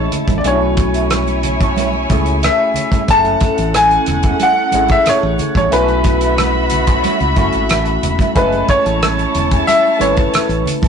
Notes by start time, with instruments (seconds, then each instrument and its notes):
Already playing: tine electric piano G#3 A3 C#4 E4, violin section E4 C#5 A5
0.12 muted clean electric guitar stroke, closed hi-hat, low conga
0.28 fingered electric bass A1, clean electric guitar A3 E4 A4, kick, closed hi-hat, high conga
0.38 grand piano D5
0.44 fingered electric bass B1, tine electric piano A3 C#4 D4 F#4, violin section E4 C#5 G#5, clean electric guitar E4 A4 C#5, grand piano C#5, closed hi-hat, muted conga
0.52 tine electric piano E4
0.61 muted clean electric guitar stroke, muted conga
0.77 muted clean electric guitar stroke, kick, closed hi-hat
0.94 clean electric guitar E4 A4 E5, closed hi-hat
1.10 muted clean electric guitar stroke, cross-stick, closed hi-hat, high conga
1.27 muted clean electric guitar stroke, closed hi-hat, muted conga
1.43 closed hi-hat, low conga
1.60 clean electric guitar E4 A4 C#5, kick, closed hi-hat
1.76 clean electric guitar E4 A4 C#5, closed hi-hat, muted conga, high conga
1.93 muted clean electric guitar stroke, muted conga
2.10 fingered electric bass C#2, tine electric piano A3 C#4 E4 G#4, clean electric guitar E4 A4 C#5, kick, closed hi-hat, high conga
2.26 muted clean electric guitar stroke, closed hi-hat
2.42 clean electric guitar E4 A4 E5, grand piano E5, cross-stick, closed hi-hat, muted conga
2.74 muted clean electric guitar stroke, closed hi-hat, low conga
2.91 clean electric guitar E4 A4 E5, kick, cross-stick, closed hi-hat, high conga
3.07 fingered electric bass F#1, clean electric guitar A3 E4 G#4, tine electric piano A3 C#4 E4 A4, violin section C#4 A4 F#5, grand piano A5, kick, closed hi-hat
3.24 muted clean electric guitar stroke, closed hi-hat
3.40 kick, closed hi-hat
3.58 fingered electric bass A1, clean electric guitar A3 E4 A4, closed hi-hat
3.74 grand piano G#5, cross-stick, closed hi-hat, high conga
3.90 closed hi-hat, muted conga
4.06 fingered electric bass E1, cross-stick, closed hi-hat, low conga
4.23 clean electric guitar A3 E4 G#4, kick, closed hi-hat
4.40 clean electric guitar A3 E4 G#4, grand piano F#5, closed hi-hat, high conga
4.57 muted clean electric guitar stroke
4.72 fingered electric bass G#1, clean electric guitar A3 E4 G#4, tine electric piano A3 C#4 E4 G#4, closed hi-hat, high conga
4.88 grand piano E5, kick, closed hi-hat
5.05 clean electric guitar A3 E4 A4, grand piano C#5, muted fingered electric bass stroke, cross-stick, closed hi-hat, muted conga
5.23 fingered electric bass A1
5.38 closed hi-hat, low conga
5.55 fingered electric bass A1, clean electric guitar A3 E4 A4, grand piano C#5, kick, closed hi-hat, high conga
5.71 fingered electric bass B1, tine electric piano A3 C#4 E4 F#4, clean electric guitar E4 A4 C#5, violin section F#4 E5 B5, grand piano B4, closed hi-hat
5.88 muted clean electric guitar stroke, closed hi-hat, muted conga
6.04 kick, closed hi-hat
6.21 clean electric guitar E4 A4 E5, closed hi-hat
6.38 muted clean electric guitar stroke, cross-stick, closed hi-hat, muted conga, high conga
6.55 muted clean electric guitar stroke, muted conga
6.70 closed hi-hat, low conga
6.87 clean electric guitar E4 A4 C#5, kick, closed hi-hat
7.04 clean electric guitar E4 A4 C#5, closed hi-hat, muted conga, high conga
7.20 fingered electric bass C#2, closed hi-hat, muted conga
7.36 fingered electric bass F#1, tine electric piano A3 C#4 E4 F#4, clean electric guitar E4 A4 C#5, kick, closed hi-hat, high conga
7.53 fingered electric bass G#1, muted clean electric guitar stroke, closed hi-hat
7.69 fingered electric bass A1, clean electric guitar E4 A4 E5, cross-stick, closed hi-hat, muted conga
7.85 closed hi-hat, muted conga
8.03 fingered electric bass E1, muted clean electric guitar stroke, closed hi-hat, low conga
8.19 clean electric guitar E4 A4 E5, kick, cross-stick, closed hi-hat, high conga
8.35 fingered electric bass F#1, tine electric piano G#3 A3 C#4 E4, clean electric guitar A3 E4 G#4, violin section E4 C#5 A5, grand piano B4, kick, closed hi-hat
8.52 muted clean electric guitar stroke, closed hi-hat, muted conga
8.69 grand piano C#5, kick, closed hi-hat
8.86 fingered electric bass A1, clean electric guitar A3 E4 A4, closed hi-hat
9.02 muted clean electric guitar stroke, cross-stick, closed hi-hat, muted conga, high conga
9.18 muted clean electric guitar stroke, closed hi-hat, muted conga
9.35 fingered electric bass E1, closed hi-hat, low conga
9.51 clean electric guitar A3 E4 G#4, kick, closed hi-hat
9.67 clean electric guitar A3 E4 G#4, grand piano E5, closed hi-hat, high conga
9.85 muted clean electric guitar stroke
9.99 fingered electric bass G#1, tine electric piano A3 C#4 E4 B4, clean electric guitar A3 E4 G#4, grand piano C#5, closed hi-hat, high conga
10.17 muted clean electric guitar stroke, kick, closed hi-hat
10.33 clean electric guitar A3 E4 A4, muted fingered electric bass stroke, cross-stick, closed hi-hat, muted conga
10.49 fingered electric bass A1, closed hi-hat, muted conga
10.66 muted clean electric guitar stroke, closed hi-hat, low conga
10.82 fingered electric bass A1, clean electric guitar A3 E4 A4, kick, closed hi-hat, high conga